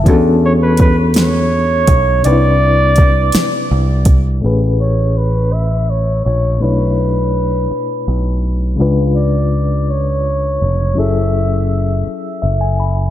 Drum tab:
HH |x-xx-x|x-xx-x|------|------|
SD |---o--|---o--|------|------|
BD |o-o--o|--o--o|------|------|

HH |------|------|
SD |------|------|
BD |------|------|